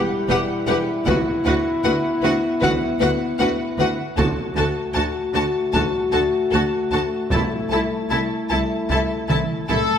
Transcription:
0.00 1.03 G3 medium
0.00 4.02 E4 medium
0.29 0.38 E1 medium
0.29 0.37 E2 medium
0.29 0.37 G4 soft
0.29 0.37 B4 medium
0.29 0.38 F#5 medium
0.67 0.76 E1 medium
0.67 0.76 E2 medium
0.67 0.77 G4 soft
0.67 0.76 B4 medium
0.67 0.75 F#5 medium
1.06 1.14 D2 medium
1.06 1.15 D2 medium
1.06 4.02 B3 medium
1.06 1.16 F#4 medium
1.06 1.15 B4 medium
1.06 1.14 F#5 medium
1.06 taiko medium
1.45 1.53 D2 medium
1.45 1.54 D2 medium
1.45 1.55 F#4 medium
1.45 1.53 B4 medium
1.45 1.53 F#5 soft
1.85 1.93 D2 medium
1.85 1.93 F#4 medium
1.85 1.93 B4 medium
1.85 1.93 F#5 medium
2.23 2.31 D2 medium
2.23 2.32 D2 medium
2.23 2.32 F#4 medium
2.23 2.31 B4 soft
2.23 2.33 F#5 medium
2.60 2.71 D2 medium
2.60 2.71 F#4 soft
2.60 2.68 B4 medium
2.60 2.71 F#5 medium
2.60 taiko medium
3.00 3.08 D2 medium
3.00 3.09 D2 medium
3.00 3.09 F#4 medium
3.00 3.08 B4 soft
3.00 3.09 F#5 medium
3.40 3.48 D2 medium
3.40 3.49 D2 medium
3.40 3.49 F#4 medium
3.40 3.49 B4 medium
3.40 3.48 F#5 medium
3.79 3.87 D2 medium
3.79 3.88 D2 medium
3.79 3.87 F#4 soft
3.79 3.87 B4 soft
3.79 3.88 F#5 soft
4.17 4.26 D2 medium
4.17 4.27 D2 medium
4.17 9.66 A3 medium
4.17 7.28 F#4 medium
4.17 4.27 F#4 medium
4.17 4.25 A4 medium
4.17 4.26 A5 soft
4.17 taiko medium
4.56 4.64 D2 medium
4.56 4.66 D2 medium
4.56 4.65 F#4 soft
4.56 4.65 A4 soft
4.56 4.65 A5 soft
4.95 5.03 D2 soft
4.95 5.04 D2 medium
4.95 5.03 F#4 soft
4.95 5.04 A4 soft
4.95 5.03 A5 medium
5.34 5.42 D2 medium
5.34 5.43 D2 medium
5.34 5.42 F#4 soft
5.34 5.43 A4 soft
5.34 5.43 A5 soft
5.73 5.82 D2 medium
5.73 5.82 D2 soft
5.73 5.83 F#4 soft
5.73 5.81 A4 soft
5.73 5.81 A5 medium
5.73 taiko medium
6.12 6.20 D2 medium
6.12 6.21 D2 soft
6.12 6.21 F#4 soft
6.12 6.21 A4 soft
6.12 6.20 A5 soft
6.51 6.61 D2 soft
6.51 6.61 D2 medium
6.51 6.61 F#4 soft
6.51 6.59 A4 soft
6.51 6.61 A5 soft
6.92 7.00 D2 soft
6.92 7.00 F#4 soft
6.92 7.00 A4 soft
6.92 7.00 A5 soft
7.31 7.39 C2 soft
7.31 7.40 C2 soft
7.31 9.66 E4 medium
7.31 7.41 E4 soft
7.31 7.39 A4 soft
7.31 7.39 A5 soft
7.31 taiko medium
7.71 7.79 C2 soft
7.71 7.80 C2 soft
7.71 7.80 E4 soft
7.71 7.80 A4 soft
7.71 7.79 A5 soft
8.10 8.19 C2 soft
8.10 8.19 E4 soft
8.10 8.20 A4 soft
8.10 8.18 A5 soft
8.50 8.59 C2 soft
8.50 8.58 E4 soft
8.50 8.59 A4 soft
8.50 8.58 A5 soft
8.90 8.98 C2 soft
8.90 8.99 C2 soft
8.90 8.98 E4 soft
8.90 8.99 A4 soft
8.90 8.99 A5 soft
8.90 taiko medium
9.29 9.38 C2 soft
9.29 9.38 E4 soft
9.29 9.37 A4 soft
9.29 9.38 A5 soft
9.29 taiko mid medium
9.69 9.77 C2 soft
9.69 9.78 C2 soft
9.69 9.98 A3 medium
9.69 9.77 E4 soft
9.69 9.98 A4 medium
9.69 9.78 A4 soft
9.69 9.77 A5 soft
9.69 taiko low-mid medium

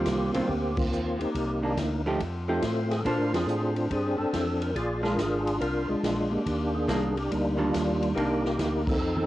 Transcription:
0.00 0.32 D#3 medium
0.00 0.32 G3 medium
0.00 0.50 A#3 medium
0.00 0.32 C4 medium
0.00 0.49 C4 medium
0.00 0.32 F4 medium
0.00 0.47 F4 medium
0.00 0.32 G4 medium
0.05 0.32 C2 medium
0.05 kick soft
0.05 snare medium
0.05 hi-hat pedal medium
0.05 ride medium
0.34 0.42 C2 soft
0.34 0.48 D#3 medium
0.34 0.48 G3 medium
0.34 0.48 C4 medium
0.34 0.48 F4 medium
0.34 ride medium
0.48 0.90 D2 medium
0.48 0.76 A#3 medium
0.48 0.76 C4 medium
0.48 0.78 G4 medium
0.48 kick soft
0.76 1.19 A#3 medium
0.76 1.30 C4 medium
0.76 1.21 F4 medium
0.76 kick medium
0.76 crash medium
0.92 1.18 D#2 medium
0.92 hi-hat pedal medium
1.19 1.26 D#2 soft
1.19 2.02 A#3 medium
1.19 2.02 D#4 soft
1.19 1.72 G4 medium
1.19 ride soft
1.35 1.76 C2 medium
1.35 kick soft
1.35 ride medium
1.62 1.75 D#3 medium
1.62 1.76 A#3 medium
1.62 1.76 D4 medium
1.77 2.18 D2 medium
1.77 kick soft
1.77 snare medium
1.77 hi-hat pedal medium
1.77 ride medium
2.06 2.19 F3 medium
2.06 2.19 A3 medium
2.06 2.19 D#4 medium
2.06 2.19 G4 medium
2.19 2.61 F2 medium
2.19 kick soft
2.19 ride medium
2.48 2.61 F3 soft
2.48 3.01 A3 medium
2.48 2.61 A3 soft
2.48 3.02 C4 medium
2.48 2.61 D#4 medium
2.48 2.92 F4 medium
2.48 2.62 G4 medium
2.62 3.04 A2 medium
2.62 kick soft
2.62 snare medium
2.62 hi-hat pedal soft
2.62 ride medium
2.90 3.02 G#4 medium
2.90 snare soft
2.90 ride soft
3.01 3.05 A4 medium
3.05 3.19 A#2 medium
3.05 3.30 A#3 medium
3.05 3.31 D4 medium
3.05 3.32 D4 medium
3.05 3.87 F4 medium
3.05 3.31 A4 medium
3.05 3.33 A#4 medium
3.05 3.31 C5 medium
3.05 kick soft
3.05 ride medium
3.19 3.33 A2 medium
3.33 3.47 F2 medium
3.33 3.90 C4 medium
3.33 3.91 D4 medium
3.33 3.74 G#4 medium
3.33 snare medium
3.33 ride medium
3.47 3.88 A2 medium
3.47 hi-hat pedal medium
3.76 ride soft
3.90 4.16 G2 medium
3.90 4.17 C4 medium
3.90 4.17 D4 medium
3.90 4.18 G#4 medium
3.90 kick soft
3.90 ride medium
4.18 4.26 G2 soft
4.18 4.71 C4 medium
4.18 4.71 D4 medium
4.18 4.62 A4 loud
4.33 4.74 F2 medium
4.33 kick soft
4.33 snare medium
4.33 hi-hat pedal soft
4.33 ride medium
4.62 4.75 A#4 medium
4.62 ride soft
4.75 5.17 A#1 medium
4.75 5.02 F4 medium
4.75 5.57 G#4 medium
4.75 5.02 D5 loud
4.75 kick soft
4.75 ride medium
5.03 5.16 G#3 medium
5.03 5.16 D4 medium
5.03 5.61 D4 medium
5.03 5.61 F4 medium
5.03 5.16 F4 medium
5.03 5.43 A#4 loud
5.03 snare soft
5.17 5.59 G#1 medium
5.17 kick soft
5.17 snare medium
5.17 hi-hat pedal medium
5.17 ride medium
5.47 ride medium
5.60 5.87 C2 medium
5.60 5.88 D4 medium
5.60 5.87 F4 medium
5.60 5.90 A#4 medium
5.60 kick soft
5.60 ride medium
5.88 5.96 C2 soft
5.88 6.42 G#3 medium
5.88 6.30 D4 medium
5.88 6.32 F4 medium
6.03 6.28 A#1 medium
6.03 kick soft
6.03 snare medium
6.03 hi-hat pedal medium
6.03 ride medium
6.30 6.37 A#1 soft
6.30 7.12 A#3 medium
6.30 6.75 D4 medium
6.30 6.75 G4 medium
6.46 6.87 D#2 medium
6.46 kick soft
6.46 ride medium
6.75 7.56 D4 medium
6.75 7.18 G#4 medium
6.87 7.29 C2 medium
6.87 7.13 D#3 medium
6.87 7.13 G3 medium
6.87 7.14 A#3 medium
6.87 7.14 D4 medium
6.87 kick soft
6.87 snare medium
6.87 hi-hat pedal soft
6.87 ride medium
7.16 7.31 G4 medium
7.16 ride soft
7.30 7.72 D2 medium
7.30 8.12 G3 medium
7.30 7.59 A#3 medium
7.30 7.60 D#4 medium
7.30 kick soft
7.30 ride medium
7.57 8.12 D#3 medium
7.57 8.13 G3 medium
7.57 8.13 A#3 medium
7.57 8.13 D4 medium
7.57 8.12 F4 medium
7.73 8.14 D#2 medium
7.73 kick soft
7.73 snare medium
7.73 hi-hat pedal medium
7.73 ride medium
8.03 ride soft
8.15 8.57 C2 medium
8.15 8.41 D#3 medium
8.15 8.97 A#3 medium
8.15 8.42 A#3 medium
8.15 8.42 D4 medium
8.15 8.89 D#4 medium
8.15 8.82 G4 medium
8.15 kick soft
8.15 ride medium
8.45 snare soft
8.58 9.00 D2 medium
8.58 kick soft
8.58 snare medium
8.58 hi-hat pedal medium
8.58 ride medium
8.87 9.26 C4 medium
8.87 9.26 D#4 medium
8.87 9.26 A4 medium
8.87 kick medium
8.87 crash medium
9.00 9.26 F2 medium
9.17 high tom medium

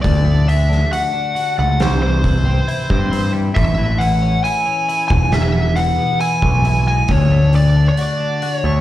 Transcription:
0.02 0.83 D2 loud
0.02 0.46 D3 medium
0.02 0.49 D5 loud
0.02 kick loud
0.02 open hi-hat soft
0.25 1.36 A3 medium
0.47 1.58 D3 medium
0.47 0.92 E5 loud
0.47 open hi-hat soft
0.70 1.12 D4 medium
0.70 snare soft
0.91 1.34 F#4 medium
0.91 1.55 F#5 loud
0.91 open hi-hat medium
1.13 1.80 D4 medium
1.35 1.80 F#4 medium
1.35 open hi-hat soft
1.57 1.78 C#2 medium
1.57 1.80 A3 medium
1.57 1.82 F#5 medium
1.80 2.59 C2 loud
1.80 2.91 C3 medium
1.80 2.01 C5 medium
1.80 snare loud
1.80 open hi-hat soft
2.02 2.23 E3 medium
2.02 3.31 C5 medium
2.24 3.78 E3 medium
2.24 kick medium
2.24 open hi-hat soft
2.45 2.89 C4 medium
2.68 3.11 E4 medium
2.68 open hi-hat soft
2.90 3.49 G2 medium
2.90 3.57 C4 medium
2.90 kick medium
3.11 4.44 E4 medium
3.11 open hi-hat medium
3.33 3.56 G3 medium
3.55 4.35 A1 loud
3.55 4.66 A2 medium
3.55 4.01 E5 medium
3.55 kick loud
3.55 open hi-hat soft
3.78 3.99 E3 medium
3.98 5.11 E3 medium
3.98 4.44 F#5 medium
3.98 open hi-hat soft
4.22 4.65 C#4 medium
4.44 4.87 E4 medium
4.44 5.07 G#5 loud
4.44 open hi-hat medium
4.66 5.11 C#4 medium
4.88 5.11 E4 medium
4.88 open hi-hat medium
5.08 5.89 E1 loud
5.08 5.32 E2 medium
5.08 5.33 G#5 medium
5.08 kick loud
5.32 6.44 E2 medium
5.32 5.78 E5 loud
5.32 snare loud
5.32 open hi-hat soft
5.55 6.65 B2 medium
5.76 6.87 E3 medium
5.76 6.20 F#5 loud
5.76 open hi-hat soft
5.98 6.42 B3 medium
6.20 6.64 E4 medium
6.20 6.86 G#5 loud
6.20 open hi-hat medium
6.42 7.02 B1 medium
6.42 7.10 B3 medium
6.42 kick medium
6.65 7.10 E4 medium
6.65 open hi-hat medium
6.87 7.10 G#3 medium
6.87 7.11 G#5 loud
7.08 7.88 D2 loud
7.08 7.53 D3 medium
7.08 7.55 C#5 medium
7.08 kick loud
7.08 open hi-hat soft
7.32 8.42 A3 medium
7.53 8.64 D3 medium
7.53 7.88 D5 medium
7.53 open hi-hat soft
7.76 8.19 D4 medium
7.89 8.57 D5 medium
7.97 8.41 F#4 medium
7.97 open hi-hat medium
8.20 8.81 D4 medium
8.42 8.81 F#4 medium
8.42 open hi-hat soft
8.57 8.81 C#5 medium
8.64 8.81 D2 loud
8.64 8.81 A3 medium

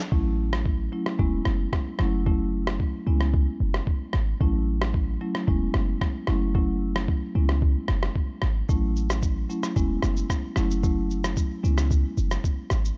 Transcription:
0.12 0.88 A1 loud
0.12 0.61 F#3 medium
0.12 0.61 A3 medium
0.12 0.62 C#4 medium
0.12 0.62 E4 loud
0.12 kick loud
0.53 cross-stick loud
0.66 kick medium
0.92 1.13 F#3 medium
0.92 1.13 A3 medium
0.92 1.13 C#4 medium
0.92 1.13 E4 medium
1.06 cross-stick medium
1.19 1.39 E1 loud
1.19 1.99 G#3 medium
1.19 1.99 B3 medium
1.19 1.98 C#4 medium
1.19 1.99 E4 medium
1.19 kick loud
1.45 1.66 F#1 loud
1.45 cross-stick medium
1.73 kick medium
1.73 cross-stick medium
1.99 2.80 F#1 loud
1.99 2.24 F#3 medium
1.99 2.24 A3 medium
1.99 2.24 C#4 medium
1.99 2.24 E4 loud
1.99 cross-stick medium
2.26 2.76 F#3 medium
2.26 2.76 A3 medium
2.26 2.76 C#4 medium
2.26 2.76 E4 loud
2.26 kick loud
2.67 cross-stick loud
2.80 kick medium
3.07 3.47 C#2 loud
3.07 3.27 G#3 medium
3.07 3.27 B3 medium
3.07 3.27 C#4 medium
3.07 3.27 E4 medium
3.21 cross-stick medium
3.34 kick loud
3.60 3.80 F#1 loud
3.74 cross-stick medium
3.87 kick loud
4.13 4.34 G#1 medium
4.13 cross-stick medium
4.40 5.17 A1 loud
4.40 4.90 F#3 medium
4.40 4.90 A3 medium
4.40 4.90 C#4 medium
4.40 4.90 E4 loud
4.40 kick loud
4.82 cross-stick loud
4.94 kick medium
5.21 5.41 F#3 medium
5.21 5.41 A3 medium
5.21 5.41 C#4 medium
5.21 5.41 E4 medium
5.35 cross-stick medium
5.47 5.68 E1 loud
5.47 6.28 G#3 medium
5.47 6.28 B3 medium
5.47 6.27 C#4 medium
5.47 6.27 E4 loud
5.47 kick loud
5.74 5.95 F#1 loud
5.74 cross-stick medium
6.01 kick loud
6.01 cross-stick loud
6.27 7.08 F#1 medium
6.27 6.53 F#3 medium
6.27 6.53 A3 medium
6.27 6.53 C#4 medium
6.27 6.53 E4 loud
6.27 cross-stick medium
6.55 7.04 F#3 medium
6.55 7.04 A3 medium
6.55 7.04 C#4 medium
6.55 7.04 E4 medium
6.55 kick loud
6.96 cross-stick loud
7.08 kick medium
7.35 7.75 C#2 loud
7.35 7.55 G#3 medium
7.35 7.56 B3 medium
7.35 7.56 C#4 medium
7.35 7.56 E4 medium
7.49 cross-stick medium
7.62 kick loud
7.88 8.09 F#1 medium
7.88 cross-stick medium
8.03 cross-stick medium
8.15 kick medium
8.42 8.62 G#1 medium
8.42 cross-stick medium
8.69 9.46 A1 loud
8.69 9.18 F#3 medium
8.69 9.19 A3 medium
8.69 9.19 C#4 medium
8.69 9.19 E4 medium
8.69 kick loud
8.69 shaker medium
8.96 shaker medium
9.10 cross-stick loud
9.10 shaker medium
9.22 kick medium
9.22 shaker medium
9.49 9.70 F#3 medium
9.49 9.70 A3 medium
9.49 9.70 C#4 medium
9.49 9.70 E4 medium
9.49 shaker soft
9.63 cross-stick medium
9.63 shaker medium
9.76 9.96 E1 loud
9.76 10.57 G#3 medium
9.76 10.57 B3 medium
9.76 10.56 C#4 medium
9.76 10.56 E4 loud
9.76 kick loud
9.76 shaker medium
10.02 10.23 F#1 medium
10.02 cross-stick medium
10.02 shaker medium
10.17 shaker medium
10.30 kick medium
10.30 cross-stick loud
10.30 shaker medium
10.56 11.37 F#1 medium
10.56 10.81 F#3 medium
10.56 10.81 A3 medium
10.56 10.82 C#4 medium
10.56 10.82 E4 loud
10.56 cross-stick medium
10.56 shaker medium
10.71 shaker medium
10.83 11.33 F#3 medium
10.83 11.33 A3 medium
10.83 11.33 C#4 medium
10.83 11.33 E4 loud
10.83 kick loud
10.83 shaker medium
11.10 shaker medium
11.24 cross-stick loud
11.24 shaker medium
11.37 kick medium
11.37 shaker medium
11.64 12.04 C#2 loud
11.64 11.84 G#3 medium
11.64 11.84 B3 medium
11.64 11.84 C#4 medium
11.64 11.84 E4 medium
11.64 shaker medium
11.78 cross-stick medium
11.78 shaker medium
11.91 kick loud
11.91 shaker medium
12.17 12.37 F#1 loud
12.17 shaker medium
12.31 cross-stick medium
12.31 shaker medium
12.44 kick medium
12.44 shaker medium
12.70 12.91 G#1 medium
12.70 cross-stick medium
12.70 shaker medium
12.85 shaker medium

